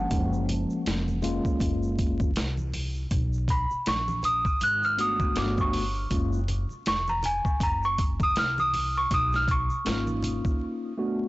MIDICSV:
0, 0, Header, 1, 6, 480
1, 0, Start_track
1, 0, Key_signature, 6, "major"
1, 0, Tempo, 750000
1, 70, Time_signature, 4, 2, 24, 8
1, 7220, End_track
2, 0, Start_track
2, 0, Title_t, "Celesta"
2, 0, Program_c, 0, 8
2, 0, Note_on_c, 0, 78, 76
2, 612, Note_off_c, 0, 78, 0
2, 2242, Note_on_c, 0, 83, 81
2, 2483, Note_off_c, 0, 83, 0
2, 2485, Note_on_c, 0, 85, 85
2, 2721, Note_on_c, 0, 87, 98
2, 2724, Note_off_c, 0, 85, 0
2, 2939, Note_off_c, 0, 87, 0
2, 2967, Note_on_c, 0, 90, 106
2, 3101, Note_off_c, 0, 90, 0
2, 3102, Note_on_c, 0, 89, 95
2, 3200, Note_off_c, 0, 89, 0
2, 3203, Note_on_c, 0, 87, 90
2, 3444, Note_off_c, 0, 87, 0
2, 3446, Note_on_c, 0, 86, 83
2, 3581, Note_off_c, 0, 86, 0
2, 3589, Note_on_c, 0, 85, 81
2, 4033, Note_off_c, 0, 85, 0
2, 4403, Note_on_c, 0, 85, 97
2, 4526, Note_off_c, 0, 85, 0
2, 4540, Note_on_c, 0, 82, 86
2, 4639, Note_off_c, 0, 82, 0
2, 4643, Note_on_c, 0, 80, 86
2, 4884, Note_off_c, 0, 80, 0
2, 4885, Note_on_c, 0, 82, 91
2, 5020, Note_off_c, 0, 82, 0
2, 5024, Note_on_c, 0, 85, 93
2, 5129, Note_off_c, 0, 85, 0
2, 5268, Note_on_c, 0, 87, 100
2, 5363, Note_off_c, 0, 87, 0
2, 5367, Note_on_c, 0, 89, 98
2, 5501, Note_off_c, 0, 89, 0
2, 5503, Note_on_c, 0, 87, 96
2, 5743, Note_off_c, 0, 87, 0
2, 5744, Note_on_c, 0, 85, 93
2, 5841, Note_off_c, 0, 85, 0
2, 5849, Note_on_c, 0, 87, 105
2, 5982, Note_off_c, 0, 87, 0
2, 5989, Note_on_c, 0, 89, 96
2, 6083, Note_off_c, 0, 89, 0
2, 6088, Note_on_c, 0, 85, 93
2, 7220, Note_off_c, 0, 85, 0
2, 7220, End_track
3, 0, Start_track
3, 0, Title_t, "Tine electric piano"
3, 0, Program_c, 1, 4
3, 0, Note_on_c, 1, 53, 72
3, 62, Note_on_c, 1, 56, 60
3, 67, Note_on_c, 1, 58, 59
3, 70, Note_on_c, 1, 61, 56
3, 73, Note_on_c, 1, 63, 56
3, 106, Note_off_c, 1, 53, 0
3, 114, Note_on_c, 1, 53, 70
3, 120, Note_off_c, 1, 63, 0
3, 746, Note_off_c, 1, 56, 0
3, 748, Note_off_c, 1, 58, 0
3, 750, Note_off_c, 1, 61, 0
3, 772, Note_off_c, 1, 53, 0
3, 781, Note_on_c, 1, 56, 88
3, 785, Note_on_c, 1, 58, 76
3, 788, Note_on_c, 1, 61, 81
3, 791, Note_on_c, 1, 65, 95
3, 1465, Note_off_c, 1, 56, 0
3, 1467, Note_off_c, 1, 58, 0
3, 1469, Note_off_c, 1, 61, 0
3, 1470, Note_off_c, 1, 65, 0
3, 3184, Note_on_c, 1, 57, 66
3, 3187, Note_on_c, 1, 59, 59
3, 3192, Note_on_c, 1, 62, 61
3, 3195, Note_on_c, 1, 66, 72
3, 3420, Note_off_c, 1, 57, 0
3, 3422, Note_off_c, 1, 59, 0
3, 3424, Note_off_c, 1, 62, 0
3, 3427, Note_on_c, 1, 57, 70
3, 3428, Note_off_c, 1, 66, 0
3, 3430, Note_on_c, 1, 59, 58
3, 3432, Note_on_c, 1, 62, 64
3, 3436, Note_on_c, 1, 66, 77
3, 3724, Note_off_c, 1, 57, 0
3, 3726, Note_off_c, 1, 59, 0
3, 3726, Note_off_c, 1, 62, 0
3, 3729, Note_off_c, 1, 66, 0
3, 3906, Note_on_c, 1, 56, 65
3, 3908, Note_on_c, 1, 58, 62
3, 3912, Note_on_c, 1, 61, 59
3, 3914, Note_on_c, 1, 65, 75
3, 4087, Note_off_c, 1, 56, 0
3, 4088, Note_off_c, 1, 58, 0
3, 4090, Note_off_c, 1, 61, 0
3, 4091, Note_off_c, 1, 65, 0
3, 6304, Note_on_c, 1, 58, 65
3, 6307, Note_on_c, 1, 61, 61
3, 6311, Note_on_c, 1, 63, 57
3, 6313, Note_on_c, 1, 65, 72
3, 6986, Note_off_c, 1, 58, 0
3, 6988, Note_off_c, 1, 61, 0
3, 6990, Note_off_c, 1, 63, 0
3, 6991, Note_off_c, 1, 65, 0
3, 7024, Note_on_c, 1, 57, 77
3, 7026, Note_on_c, 1, 59, 69
3, 7031, Note_on_c, 1, 62, 67
3, 7033, Note_on_c, 1, 66, 88
3, 7206, Note_off_c, 1, 57, 0
3, 7207, Note_off_c, 1, 59, 0
3, 7210, Note_off_c, 1, 62, 0
3, 7210, Note_off_c, 1, 66, 0
3, 7220, End_track
4, 0, Start_track
4, 0, Title_t, "Upright bass"
4, 0, Program_c, 2, 32
4, 71, Note_on_c, 2, 30, 91
4, 430, Note_off_c, 2, 30, 0
4, 552, Note_on_c, 2, 29, 82
4, 911, Note_off_c, 2, 29, 0
4, 1028, Note_on_c, 2, 30, 93
4, 1485, Note_off_c, 2, 30, 0
4, 1513, Note_on_c, 2, 36, 86
4, 1968, Note_off_c, 2, 36, 0
4, 1993, Note_on_c, 2, 35, 98
4, 2351, Note_off_c, 2, 35, 0
4, 2474, Note_on_c, 2, 34, 86
4, 2832, Note_off_c, 2, 34, 0
4, 2954, Note_on_c, 2, 32, 92
4, 3408, Note_off_c, 2, 32, 0
4, 3431, Note_on_c, 2, 31, 99
4, 3887, Note_off_c, 2, 31, 0
4, 3911, Note_on_c, 2, 30, 106
4, 4270, Note_off_c, 2, 30, 0
4, 4393, Note_on_c, 2, 29, 86
4, 4751, Note_off_c, 2, 29, 0
4, 4867, Note_on_c, 2, 30, 94
4, 5325, Note_off_c, 2, 30, 0
4, 5354, Note_on_c, 2, 36, 82
4, 5809, Note_off_c, 2, 36, 0
4, 5831, Note_on_c, 2, 35, 106
4, 6190, Note_off_c, 2, 35, 0
4, 6312, Note_on_c, 2, 32, 96
4, 6671, Note_off_c, 2, 32, 0
4, 7220, End_track
5, 0, Start_track
5, 0, Title_t, "Muted upright bass strokes"
5, 451, Note_on_c, 9, 29, 47
5, 515, Note_off_c, 9, 29, 0
5, 929, Note_on_c, 9, 29, 48
5, 993, Note_off_c, 9, 29, 0
5, 2374, Note_on_c, 9, 29, 48
5, 2438, Note_off_c, 9, 29, 0
5, 2849, Note_on_c, 9, 29, 46
5, 2913, Note_off_c, 9, 29, 0
5, 4292, Note_on_c, 9, 29, 44
5, 4356, Note_off_c, 9, 29, 0
5, 4770, Note_on_c, 9, 29, 45
5, 4834, Note_off_c, 9, 29, 0
5, 6209, Note_on_c, 9, 29, 47
5, 6273, Note_off_c, 9, 29, 0
5, 6689, Note_on_c, 9, 29, 47
5, 6753, Note_off_c, 9, 29, 0
5, 7220, End_track
6, 0, Start_track
6, 0, Title_t, "Drums"
6, 68, Note_on_c, 9, 82, 60
6, 69, Note_on_c, 9, 42, 85
6, 70, Note_on_c, 9, 36, 109
6, 132, Note_off_c, 9, 82, 0
6, 133, Note_off_c, 9, 42, 0
6, 134, Note_off_c, 9, 36, 0
6, 212, Note_on_c, 9, 82, 47
6, 276, Note_off_c, 9, 82, 0
6, 312, Note_on_c, 9, 42, 67
6, 313, Note_on_c, 9, 64, 63
6, 313, Note_on_c, 9, 82, 46
6, 376, Note_off_c, 9, 42, 0
6, 377, Note_off_c, 9, 64, 0
6, 377, Note_off_c, 9, 82, 0
6, 449, Note_on_c, 9, 82, 44
6, 513, Note_off_c, 9, 82, 0
6, 552, Note_on_c, 9, 42, 82
6, 553, Note_on_c, 9, 82, 57
6, 559, Note_on_c, 9, 38, 112
6, 616, Note_off_c, 9, 42, 0
6, 617, Note_off_c, 9, 82, 0
6, 623, Note_off_c, 9, 38, 0
6, 691, Note_on_c, 9, 63, 58
6, 691, Note_on_c, 9, 82, 44
6, 755, Note_off_c, 9, 63, 0
6, 755, Note_off_c, 9, 82, 0
6, 783, Note_on_c, 9, 64, 67
6, 783, Note_on_c, 9, 82, 46
6, 793, Note_on_c, 9, 42, 73
6, 847, Note_off_c, 9, 64, 0
6, 847, Note_off_c, 9, 82, 0
6, 857, Note_off_c, 9, 42, 0
6, 927, Note_on_c, 9, 36, 81
6, 929, Note_on_c, 9, 82, 52
6, 991, Note_off_c, 9, 36, 0
6, 993, Note_off_c, 9, 82, 0
6, 1024, Note_on_c, 9, 82, 69
6, 1026, Note_on_c, 9, 36, 101
6, 1031, Note_on_c, 9, 42, 94
6, 1088, Note_off_c, 9, 82, 0
6, 1090, Note_off_c, 9, 36, 0
6, 1095, Note_off_c, 9, 42, 0
6, 1169, Note_on_c, 9, 82, 44
6, 1233, Note_off_c, 9, 82, 0
6, 1269, Note_on_c, 9, 82, 44
6, 1270, Note_on_c, 9, 42, 80
6, 1271, Note_on_c, 9, 36, 91
6, 1333, Note_off_c, 9, 82, 0
6, 1334, Note_off_c, 9, 42, 0
6, 1335, Note_off_c, 9, 36, 0
6, 1407, Note_on_c, 9, 36, 94
6, 1407, Note_on_c, 9, 63, 64
6, 1407, Note_on_c, 9, 82, 49
6, 1471, Note_off_c, 9, 36, 0
6, 1471, Note_off_c, 9, 63, 0
6, 1471, Note_off_c, 9, 82, 0
6, 1507, Note_on_c, 9, 82, 55
6, 1509, Note_on_c, 9, 42, 90
6, 1516, Note_on_c, 9, 38, 110
6, 1571, Note_off_c, 9, 82, 0
6, 1573, Note_off_c, 9, 42, 0
6, 1580, Note_off_c, 9, 38, 0
6, 1647, Note_on_c, 9, 63, 55
6, 1647, Note_on_c, 9, 82, 42
6, 1711, Note_off_c, 9, 63, 0
6, 1711, Note_off_c, 9, 82, 0
6, 1751, Note_on_c, 9, 46, 52
6, 1751, Note_on_c, 9, 63, 38
6, 1751, Note_on_c, 9, 64, 55
6, 1751, Note_on_c, 9, 82, 40
6, 1815, Note_off_c, 9, 46, 0
6, 1815, Note_off_c, 9, 63, 0
6, 1815, Note_off_c, 9, 64, 0
6, 1815, Note_off_c, 9, 82, 0
6, 1884, Note_on_c, 9, 82, 39
6, 1948, Note_off_c, 9, 82, 0
6, 1989, Note_on_c, 9, 82, 56
6, 1990, Note_on_c, 9, 42, 86
6, 1991, Note_on_c, 9, 36, 108
6, 2053, Note_off_c, 9, 82, 0
6, 2054, Note_off_c, 9, 42, 0
6, 2055, Note_off_c, 9, 36, 0
6, 2131, Note_on_c, 9, 82, 48
6, 2195, Note_off_c, 9, 82, 0
6, 2227, Note_on_c, 9, 36, 78
6, 2230, Note_on_c, 9, 64, 63
6, 2230, Note_on_c, 9, 82, 45
6, 2232, Note_on_c, 9, 42, 66
6, 2291, Note_off_c, 9, 36, 0
6, 2294, Note_off_c, 9, 64, 0
6, 2294, Note_off_c, 9, 82, 0
6, 2296, Note_off_c, 9, 42, 0
6, 2370, Note_on_c, 9, 82, 49
6, 2434, Note_off_c, 9, 82, 0
6, 2470, Note_on_c, 9, 42, 85
6, 2473, Note_on_c, 9, 82, 59
6, 2477, Note_on_c, 9, 38, 110
6, 2534, Note_off_c, 9, 42, 0
6, 2537, Note_off_c, 9, 82, 0
6, 2541, Note_off_c, 9, 38, 0
6, 2611, Note_on_c, 9, 63, 59
6, 2611, Note_on_c, 9, 82, 42
6, 2675, Note_off_c, 9, 63, 0
6, 2675, Note_off_c, 9, 82, 0
6, 2706, Note_on_c, 9, 64, 63
6, 2706, Note_on_c, 9, 82, 48
6, 2713, Note_on_c, 9, 42, 76
6, 2770, Note_off_c, 9, 64, 0
6, 2770, Note_off_c, 9, 82, 0
6, 2777, Note_off_c, 9, 42, 0
6, 2848, Note_on_c, 9, 36, 80
6, 2851, Note_on_c, 9, 82, 51
6, 2912, Note_off_c, 9, 36, 0
6, 2915, Note_off_c, 9, 82, 0
6, 2947, Note_on_c, 9, 82, 69
6, 2951, Note_on_c, 9, 42, 93
6, 3011, Note_off_c, 9, 82, 0
6, 3015, Note_off_c, 9, 42, 0
6, 3092, Note_on_c, 9, 82, 45
6, 3156, Note_off_c, 9, 82, 0
6, 3191, Note_on_c, 9, 42, 76
6, 3191, Note_on_c, 9, 82, 43
6, 3255, Note_off_c, 9, 42, 0
6, 3255, Note_off_c, 9, 82, 0
6, 3326, Note_on_c, 9, 36, 95
6, 3326, Note_on_c, 9, 63, 71
6, 3326, Note_on_c, 9, 82, 44
6, 3390, Note_off_c, 9, 36, 0
6, 3390, Note_off_c, 9, 63, 0
6, 3390, Note_off_c, 9, 82, 0
6, 3428, Note_on_c, 9, 42, 88
6, 3428, Note_on_c, 9, 82, 53
6, 3435, Note_on_c, 9, 38, 109
6, 3492, Note_off_c, 9, 42, 0
6, 3492, Note_off_c, 9, 82, 0
6, 3499, Note_off_c, 9, 38, 0
6, 3568, Note_on_c, 9, 63, 59
6, 3568, Note_on_c, 9, 82, 43
6, 3570, Note_on_c, 9, 36, 92
6, 3632, Note_off_c, 9, 63, 0
6, 3632, Note_off_c, 9, 82, 0
6, 3634, Note_off_c, 9, 36, 0
6, 3669, Note_on_c, 9, 46, 56
6, 3672, Note_on_c, 9, 63, 38
6, 3672, Note_on_c, 9, 64, 56
6, 3672, Note_on_c, 9, 82, 39
6, 3733, Note_off_c, 9, 46, 0
6, 3736, Note_off_c, 9, 63, 0
6, 3736, Note_off_c, 9, 64, 0
6, 3736, Note_off_c, 9, 82, 0
6, 3802, Note_on_c, 9, 82, 39
6, 3866, Note_off_c, 9, 82, 0
6, 3905, Note_on_c, 9, 82, 58
6, 3908, Note_on_c, 9, 42, 90
6, 3909, Note_on_c, 9, 36, 107
6, 3969, Note_off_c, 9, 82, 0
6, 3972, Note_off_c, 9, 42, 0
6, 3973, Note_off_c, 9, 36, 0
6, 4048, Note_on_c, 9, 82, 49
6, 4112, Note_off_c, 9, 82, 0
6, 4149, Note_on_c, 9, 42, 65
6, 4150, Note_on_c, 9, 64, 64
6, 4150, Note_on_c, 9, 82, 45
6, 4213, Note_off_c, 9, 42, 0
6, 4214, Note_off_c, 9, 64, 0
6, 4214, Note_off_c, 9, 82, 0
6, 4289, Note_on_c, 9, 82, 48
6, 4353, Note_off_c, 9, 82, 0
6, 4390, Note_on_c, 9, 42, 83
6, 4391, Note_on_c, 9, 82, 63
6, 4397, Note_on_c, 9, 38, 116
6, 4454, Note_off_c, 9, 42, 0
6, 4455, Note_off_c, 9, 82, 0
6, 4461, Note_off_c, 9, 38, 0
6, 4529, Note_on_c, 9, 63, 58
6, 4529, Note_on_c, 9, 82, 41
6, 4593, Note_off_c, 9, 63, 0
6, 4593, Note_off_c, 9, 82, 0
6, 4625, Note_on_c, 9, 64, 67
6, 4625, Note_on_c, 9, 82, 49
6, 4633, Note_on_c, 9, 42, 74
6, 4689, Note_off_c, 9, 64, 0
6, 4689, Note_off_c, 9, 82, 0
6, 4697, Note_off_c, 9, 42, 0
6, 4767, Note_on_c, 9, 36, 78
6, 4770, Note_on_c, 9, 82, 52
6, 4831, Note_off_c, 9, 36, 0
6, 4834, Note_off_c, 9, 82, 0
6, 4866, Note_on_c, 9, 36, 100
6, 4866, Note_on_c, 9, 82, 66
6, 4870, Note_on_c, 9, 42, 89
6, 4930, Note_off_c, 9, 36, 0
6, 4930, Note_off_c, 9, 82, 0
6, 4934, Note_off_c, 9, 42, 0
6, 5011, Note_on_c, 9, 82, 41
6, 5075, Note_off_c, 9, 82, 0
6, 5110, Note_on_c, 9, 36, 96
6, 5110, Note_on_c, 9, 42, 85
6, 5110, Note_on_c, 9, 82, 44
6, 5174, Note_off_c, 9, 36, 0
6, 5174, Note_off_c, 9, 42, 0
6, 5174, Note_off_c, 9, 82, 0
6, 5247, Note_on_c, 9, 36, 92
6, 5249, Note_on_c, 9, 63, 71
6, 5249, Note_on_c, 9, 82, 46
6, 5311, Note_off_c, 9, 36, 0
6, 5313, Note_off_c, 9, 63, 0
6, 5313, Note_off_c, 9, 82, 0
6, 5349, Note_on_c, 9, 42, 89
6, 5349, Note_on_c, 9, 82, 56
6, 5356, Note_on_c, 9, 38, 112
6, 5413, Note_off_c, 9, 42, 0
6, 5413, Note_off_c, 9, 82, 0
6, 5420, Note_off_c, 9, 38, 0
6, 5492, Note_on_c, 9, 63, 59
6, 5492, Note_on_c, 9, 82, 39
6, 5556, Note_off_c, 9, 63, 0
6, 5556, Note_off_c, 9, 82, 0
6, 5590, Note_on_c, 9, 63, 39
6, 5590, Note_on_c, 9, 64, 52
6, 5590, Note_on_c, 9, 82, 41
6, 5591, Note_on_c, 9, 46, 59
6, 5654, Note_off_c, 9, 63, 0
6, 5654, Note_off_c, 9, 64, 0
6, 5654, Note_off_c, 9, 82, 0
6, 5655, Note_off_c, 9, 46, 0
6, 5724, Note_on_c, 9, 82, 38
6, 5788, Note_off_c, 9, 82, 0
6, 5828, Note_on_c, 9, 82, 59
6, 5829, Note_on_c, 9, 36, 113
6, 5829, Note_on_c, 9, 42, 83
6, 5892, Note_off_c, 9, 82, 0
6, 5893, Note_off_c, 9, 36, 0
6, 5893, Note_off_c, 9, 42, 0
6, 5969, Note_on_c, 9, 82, 46
6, 5978, Note_on_c, 9, 38, 36
6, 6033, Note_off_c, 9, 82, 0
6, 6042, Note_off_c, 9, 38, 0
6, 6065, Note_on_c, 9, 36, 80
6, 6068, Note_on_c, 9, 64, 62
6, 6068, Note_on_c, 9, 82, 47
6, 6069, Note_on_c, 9, 42, 64
6, 6129, Note_off_c, 9, 36, 0
6, 6132, Note_off_c, 9, 64, 0
6, 6132, Note_off_c, 9, 82, 0
6, 6133, Note_off_c, 9, 42, 0
6, 6207, Note_on_c, 9, 82, 51
6, 6271, Note_off_c, 9, 82, 0
6, 6309, Note_on_c, 9, 42, 86
6, 6310, Note_on_c, 9, 82, 62
6, 6316, Note_on_c, 9, 38, 118
6, 6373, Note_off_c, 9, 42, 0
6, 6374, Note_off_c, 9, 82, 0
6, 6380, Note_off_c, 9, 38, 0
6, 6446, Note_on_c, 9, 63, 61
6, 6446, Note_on_c, 9, 82, 44
6, 6510, Note_off_c, 9, 63, 0
6, 6510, Note_off_c, 9, 82, 0
6, 6544, Note_on_c, 9, 64, 70
6, 6544, Note_on_c, 9, 82, 49
6, 6553, Note_on_c, 9, 42, 81
6, 6608, Note_off_c, 9, 64, 0
6, 6608, Note_off_c, 9, 82, 0
6, 6617, Note_off_c, 9, 42, 0
6, 6687, Note_on_c, 9, 36, 80
6, 6687, Note_on_c, 9, 82, 51
6, 6751, Note_off_c, 9, 36, 0
6, 6751, Note_off_c, 9, 82, 0
6, 7220, End_track
0, 0, End_of_file